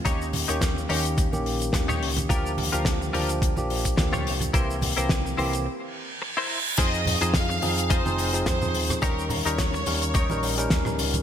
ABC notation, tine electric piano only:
X:1
M:4/4
L:1/16
Q:"Swing 16ths" 1/4=107
K:Fm
V:1 name="Tine electric piano"
[E,B,DG]3 [E,B,DG]3 [E,B,DG]3 [E,B,DG]3 [E,B,DG]4 | [F,B,=DG]3 [F,B,DG]3 [F,B,DG]3 [F,B,DG]3 [F,B,DG]4 | [=E,B,CG]3 [E,B,CG]3 [E,B,CG]2 z8 | [F,CEA]3 [F,CEA]3 [F,CEA]3 [F,CEA]2 [F,CEA]2 [F,CEA]3 |
[G,DEB]3 [G,DEB]3 [G,DEB]3 [G,DEB]2 [G,DEB]2 [G,DEB]3 |]